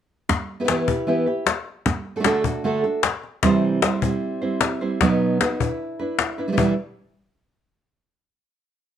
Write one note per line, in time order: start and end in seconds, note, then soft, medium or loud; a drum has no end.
0.29 muted nylon-string guitar stroke medium
0.29 cajon bass loud
0.29 cajon slap soft
0.60 0.63 B3 soft
0.60 0.64 E4 medium
0.60 0.64 G4 medium
0.60 0.64 B4 medium
0.64 0.68 B3 medium
0.64 0.68 E4 medium
0.64 0.69 G4 medium
0.64 0.69 B4 medium
0.64 cajon slap loud
0.69 0.87 E3 medium
0.69 0.88 B3 medium
0.69 0.87 E4 medium
0.69 0.87 G4 medium
0.69 0.87 B4 medium
0.88 1.07 E4 medium
0.88 1.07 G4 medium
0.88 1.07 B4 medium
0.88 cajon bass medium
1.07 1.26 E3 medium
1.07 1.26 B3 medium
1.07 1.27 E4 loud
1.07 1.26 G4 medium
1.07 1.25 B4 loud
1.26 1.45 E4 soft
1.26 1.45 G4 medium
1.26 1.45 B4 medium
1.26 cajon slap soft
1.46 muted nylon-string guitar stroke medium
1.46 cajon slap loud
1.86 muted nylon-string guitar stroke medium
1.86 cajon bass loud
1.86 cajon slap soft
2.16 2.19 A3 medium
2.16 2.19 D4 medium
2.16 2.20 F#4 medium
2.16 2.20 A4 medium
2.20 2.24 A3 medium
2.20 2.24 D4 medium
2.20 2.24 F#4 medium
2.20 2.25 A4 medium
2.24 2.44 D3 medium
2.24 2.44 A3 medium
2.24 2.44 D4 medium
2.24 2.44 F#4 medium
2.24 2.43 A4 loud
2.24 cajon slap loud
2.44 2.64 D4 medium
2.44 2.64 F#4 medium
2.44 2.64 A4 medium
2.44 cajon bass medium
2.64 2.83 D3 loud
2.64 2.84 A3 loud
2.64 2.84 D4 medium
2.64 2.83 F#4 medium
2.64 2.82 A4 loud
2.84 3.03 D4 soft
2.84 3.03 F#4 medium
2.84 3.03 A4 medium
2.84 cajon slap soft
3.03 muted nylon-string guitar stroke medium
3.03 cajon slap loud
3.23 cajon slap soft
3.43 3.82 C3 medium
3.43 3.82 E3 medium
3.43 3.81 G3 medium
3.43 3.82 C4 loud
3.43 3.82 E4 medium
3.43 3.83 C5 loud
3.43 cajon bass loud
3.43 cajon slap soft
3.82 4.01 G3 medium
3.82 4.02 C4 medium
3.82 4.01 E4 medium
3.82 4.00 C5 medium
3.82 cajon slap loud
4.01 4.42 G3 medium
4.01 4.41 C4 medium
4.01 4.41 E4 medium
4.01 4.40 C5 medium
4.01 cajon bass medium
4.42 4.81 G3 soft
4.42 4.81 C4 medium
4.42 4.80 E4 medium
4.42 4.80 C5 medium
4.42 cajon slap soft
4.61 cajon slap loud
4.81 5.01 G3 medium
4.81 5.00 C4 medium
4.81 5.00 E4 medium
4.81 5.00 C5 medium
5.01 5.39 B2 medium
5.01 5.40 F#3 medium
5.01 5.39 B3 loud
5.01 5.39 D#4 loud
5.01 5.40 F#4 loud
5.01 5.40 B4 loud
5.01 cajon bass loud
5.01 cajon slap soft
5.40 5.59 B3 medium
5.40 5.59 D#4 medium
5.40 5.60 F#4 medium
5.40 5.59 B4 medium
5.40 cajon slap loud
5.60 5.99 D4 medium
5.60 5.99 E4 medium
5.60 5.98 B4 medium
5.60 cajon bass medium
5.99 6.39 D4 soft
5.99 6.38 E4 soft
5.99 6.37 B4 medium
5.99 cajon slap soft
6.19 cajon slap loud
6.38 6.47 D4 medium
6.38 6.47 E4 medium
6.38 6.48 B4 medium
6.38 cajon slap soft
6.48 6.51 G3 medium
6.48 6.52 D4 medium
6.48 6.52 E4 medium
6.48 6.53 B4 medium
6.52 6.56 G3 medium
6.52 6.56 D4 medium
6.52 6.56 E4 medium
6.52 6.57 B4 medium
6.57 6.73 E3 medium
6.57 6.73 G3 medium
6.57 6.73 D4 loud
6.57 6.73 E4 loud
6.57 6.73 B4 loud
6.57 cajon bass loud